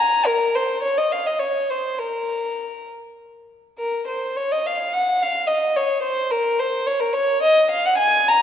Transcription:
0.00 A#5
0.26 A#4
0.55 C5
0.82 C#5
0.98 D#5
1.12 F5
1.26 D#5
1.39 C#5
1.70 C5
1.99 A#4
3.78 A#4
4.08 C5
4.36 C#5
4.52 D#5
4.66 F5
4.93 F#5
5.22 F5
5.47 D#5
5.76 C#5
6.03 C5
6.30 A#4
6.59 C5
6.87 C#5
7.00 A#4
7.13 C#5
7.43 D#5
7.71 F5
7.85 F#5
7.98 G#5
8.28 A#5

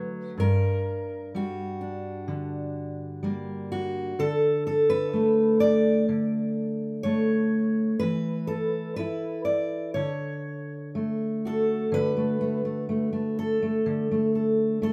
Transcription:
Already playing: D3 F#3 A3 B4
0.38 G2 A#4
1.35 G3 F#4
1.81 D4
2.28 D3
3.23 G3 A#3
3.72 F#4
4.19 D3 A4
4.67 A4
4.90 B4
5.13 A3
5.60 D5
6.09 D3
7.03 A3 C#5
7.99 E3 B4
8.47 A4
8.96 E4 B4
9.45 D5
9.94 D3 C#5
10.95 A3
11.45 F#4 A4
11.92 D3 B4
12.17 A3
12.41 A3
12.65 A3
12.89 A3
13.13 A3
13.39 A4
13.62 A3
13.86 D3
14.11 A3
14.35 A4
14.82 A3 A4

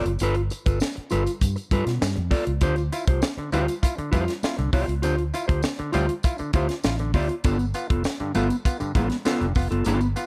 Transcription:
Already playing: F4
0.05 F#1, muted clean electric guitar stroke, closed hi-hat
0.19 G1 F4, closed hi-hat, tambourine, muted conga
0.23 A4 B4
0.35 muted clean electric guitar stroke, closed hi-hat
0.50 muted clean electric guitar stroke, closed hi-hat, tambourine
0.66 G1 F4 A4 B4, kick, closed hi-hat, tambourine
0.80 muted clean electric guitar stroke, snare, tambourine, high conga
0.96 muted clean electric guitar stroke, muted fingered electric bass stroke, closed hi-hat
1.10 G1 F4 A4 B4, closed hi-hat, tambourine, low conga
1.26 muted clean electric guitar stroke, closed hi-hat, tambourine
1.41 G2, kick, closed hi-hat, tambourine, muted conga
1.56 muted clean electric guitar stroke, closed hi-hat, tambourine
1.71 G2 F4 A4 B4, kick, closed hi-hat, tambourine, muted conga, low conga
1.86 B2, muted clean electric guitar stroke, snare, closed hi-hat
2.01 G2, muted clean electric guitar stroke, snare, tambourine, high conga
2.16 F2, muted clean electric guitar stroke, closed hi-hat
2.31 F4 A4 D5, kick, open hi-hat, tambourine, high conga
2.47 C#2, muted clean electric guitar stroke, closed hi-hat
2.61 D2 D3 F4 G4 C5, kick, closed hi-hat, tambourine, muted conga
2.76 muted clean electric guitar stroke, closed hi-hat, tambourine
2.92 E4 F4, muted clean electric guitar stroke, closed hi-hat, tambourine
3.08 C2 F4 G4 C5, kick, closed hi-hat
3.22 E4 F4, muted clean electric guitar stroke, snare, tambourine, high conga
3.37 D3, muted fingered electric bass stroke, muted clean electric guitar stroke, closed hi-hat
3.52 D2 G3 C4 E4 F4 G4 C5, closed hi-hat, tambourine, low conga
3.68 muted clean electric guitar stroke, closed hi-hat, tambourine
3.83 E4 F4, kick, closed hi-hat, tambourine, muted conga
3.97 D3, muted clean electric guitar stroke, muted fingered electric bass stroke, closed hi-hat
4.12 F2 E4 F4 G4 C5, kick, closed hi-hat, tambourine, muted conga, low conga
4.27 muted clean electric guitar stroke, snare, closed hi-hat
4.43 E4 F4, snare, tambourine, high conga
4.57 C2 D3, muted clean electric guitar stroke, closed hi-hat
4.73 C2 E4 F4 G4 D5, kick, open hi-hat, tambourine, high conga
4.87 C#2, muted clean electric guitar stroke, closed hi-hat
5.02 D2 D3 F4 G4 C5, closed hi-hat, tambourine, muted conga
5.18 muted clean electric guitar stroke, closed hi-hat
5.34 E4 F4, muted clean electric guitar stroke, closed hi-hat, tambourine
5.48 D2 F4 G4 C5, kick, closed hi-hat
5.63 E4 F4, muted clean electric guitar stroke, snare, tambourine, high conga
5.79 D3, muted clean electric guitar stroke, muted fingered electric bass stroke, closed hi-hat
5.92 D2 G3 C4 E4 F4 G4 C5, closed hi-hat, tambourine, low conga
6.09 muted clean electric guitar stroke, closed hi-hat
6.23 E4 F4, kick, closed hi-hat, tambourine
6.38 D3, muted clean electric guitar stroke, muted fingered electric bass stroke, closed hi-hat, tambourine
6.53 D2 E4 F4 G4 C5, kick, closed hi-hat, tambourine, muted conga
6.69 muted clean electric guitar stroke, snare, closed hi-hat
6.84 A1 E4 F4, muted clean electric guitar stroke, snare, tambourine, high conga
6.99 D3, muted clean electric guitar stroke, closed hi-hat
7.14 D2 E4 F4 G4 D5, kick, open hi-hat, tambourine, high conga
7.29 muted clean electric guitar stroke, closed hi-hat
7.44 G1 G2 D3 B3 F4 A4, kick, closed hi-hat, tambourine, muted conga
7.59 muted clean electric guitar stroke, closed hi-hat, tambourine
7.74 B3 F4, muted clean electric guitar stroke, closed hi-hat, tambourine
7.90 F1 B3 F4 A4, kick, closed hi-hat
8.04 B3 F4, snare, tambourine, high conga
8.20 G2 D3, muted fingered electric bass stroke, muted clean electric guitar stroke, closed hi-hat
8.35 G1 A3 B3 F4 A4, closed hi-hat, tambourine, low conga
8.50 muted clean electric guitar stroke, closed hi-hat, tambourine
8.65 B3 F4, kick, closed hi-hat, tambourine, muted conga
8.80 G2 D3, muted clean electric guitar stroke, muted fingered electric bass stroke, closed hi-hat, tambourine
8.95 A1 B3 F4 A4, kick, closed hi-hat, tambourine, muted conga, low conga
9.10 muted clean electric guitar stroke, snare, closed hi-hat
9.25 B3 F4 A4, snare, tambourine, high conga
9.41 F1 G2 D3, closed hi-hat
9.55 F1 B3 F4, muted clean electric guitar stroke, kick, open hi-hat, tambourine, high conga
9.71 F#1 B3 F4 A4, closed hi-hat
9.85 G1 G2 D3 B3 F4 A4, closed hi-hat, tambourine, muted conga
10.01 muted clean electric guitar stroke, closed hi-hat, tambourine
10.16 B3 F4, muted clean electric guitar stroke, closed hi-hat, tambourine

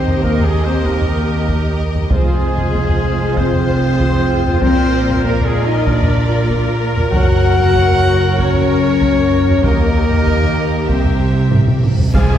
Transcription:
Already playing: D#2 C4 G4 A#4 C5 D#5
0.07 taiko low
0.22 A#3 A#4, taiko
0.39 G#4, taiko low
0.44 G#3 G#4
0.64 C4 C5
0.86 A#3 A#4, taiko
1.02 taiko low
1.48 taiko
1.95 taiko low
2.10 F1 F2 G#3 F4 G#4 C5, taiko
2.58 taiko low
2.74 taiko
2.89 taiko low
3.37 C4 C5, taiko
3.52 taiko low
3.99 taiko
4.46 taiko low
4.61 A#1 A#2 C4 A#4 C5 D5, taiko
5.09 taiko low
5.24 A#3 A#4, taiko
5.40 taiko low
5.45 G#3 G#4
5.66 D#4 D#5
5.87 D4 D5, taiko
6.02 taiko low
6.49 taiko
6.97 taiko low
7.12 F#1 F#2 F#4 C#5 F#5, taiko
7.59 taiko low
7.75 taiko
7.91 taiko low
8.38 C#4 C#5, taiko
8.54 taiko low
9.01 taiko
9.48 taiko low
9.63 D#2 A#3 G4 A#4 D#5, taiko, reverse cymbal
10.11 taiko low
10.26 taiko
10.42 taiko low
10.89 C2 C4 C5 E5, taiko
11.05 taiko low
11.11 C3
11.18 C3
11.26 C3
11.33 C3
11.41 C3
11.48 C3, taiko low-mid
11.56 C3
11.63 C3
11.67 taiko low-mid
11.71 C3
11.79 C3
11.83 C3, taiko low-mid
11.94 C3
11.99 C3, taiko low
12.13 F2 C3 G#3 F4 G#4 C5 F5 G#5, concert bass drum, taiko, crash, impact
12.30 F2 G4 E5

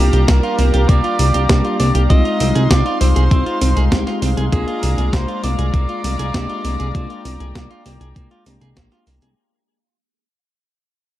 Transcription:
Already playing: G3 A#3 D4 F4 G4 D5 F5 A#5
0.00 C2
0.13 C2 G4, closed hi-hat
0.28 C2 A#3 A#4, kick, snare, closed hi-hat
0.43 F4, closed hi-hat
0.59 C2 A#3, open hi-hat
0.74 C2 G4, closed hi-hat
0.89 C2 A#3 D5, kick, closed hi-hat
1.04 F4, closed hi-hat
1.19 C2 A#3, open hi-hat
1.34 C2 G4, closed hi-hat
1.49 C2 G3 A#3 D4 G4, kick, snare, closed hi-hat
1.65 F4, closed hi-hat
1.79 C2 A#3 D5, open hi-hat
1.95 C2 G4, closed hi-hat
2.10 C2 G#3 C4 D#4 F4 D#5 C6, kick, closed hi-hat
2.25 F4, closed hi-hat
2.40 C2 C4, open hi-hat
2.55 C2 G#4, closed hi-hat
2.70 C2 C4 D5, kick, snare, closed hi-hat
2.86 F4, closed hi-hat
3.01 C2 C4 C5, open hi-hat
3.16 C2 G#4, closed hi-hat
3.31 C2 C4, kick, closed hi-hat
3.46 F4, closed hi-hat
3.61 C2 C4, open hi-hat
3.77 C2 G#4, closed hi-hat
3.92 C2 G#3 C4 D#4 G4, kick, snare, closed hi-hat
4.07 F4, snare, closed hi-hat
4.22 C2 C4, open hi-hat
4.37 C2 G#4, closed hi-hat
4.52 C2 G#3 A#3 D4 F4 G#4 D5 F5 A#5, kick, closed hi-hat
4.68 F4, closed hi-hat
4.83 C2 A#3, open hi-hat
4.98 C2 G#4, closed hi-hat
5.13 C2 A#3 C5, kick, snare, closed hi-hat
5.28 F4, closed hi-hat
5.43 C2 A#3 D5, open hi-hat
5.59 C2 G#4, closed hi-hat
5.74 C2 A#3, kick, closed hi-hat
5.89 F4, closed hi-hat
6.04 C2 A#3, open hi-hat
6.19 C2 G#4, closed hi-hat
6.34 C2 G#3 A#3 D4 G4, kick, snare, closed hi-hat
6.49 F4, closed hi-hat
6.65 C2 A#3, open hi-hat
6.80 C2 G#4, closed hi-hat
6.95 C2 G#3 A#3 D4 F4 G5, kick, closed hi-hat
7.10 F4, closed hi-hat
7.25 C2 A#3, open hi-hat
7.40 C2 G#4, closed hi-hat
7.55 C2 A#3, kick, snare, closed hi-hat
7.70 F4, closed hi-hat
7.86 C2 A#3, open hi-hat
8.01 C2 G#4, closed hi-hat
8.16 C2 A#3, kick, closed hi-hat
8.31 F4, closed hi-hat
8.46 C2 G#3 A#3 D4 G4, open hi-hat
8.61 C2 G#4, closed hi-hat
8.77 A#1 A#3, kick, snare, closed hi-hat
8.92 F4, snare, closed hi-hat
9.07 C2 A#3, open hi-hat
9.22 C2 G#4, closed hi-hat

